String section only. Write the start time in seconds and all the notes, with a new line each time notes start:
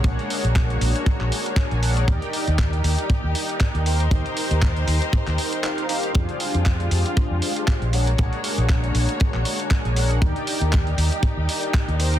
Already playing: G#3 A#3 F#4 C#5
2.08 D#4 G4
3.86 A#4 C5
6.15 G#3 F4
7.94 A#3 F#4 C#5
10.21 D#4 G4
11.99 A#4 C5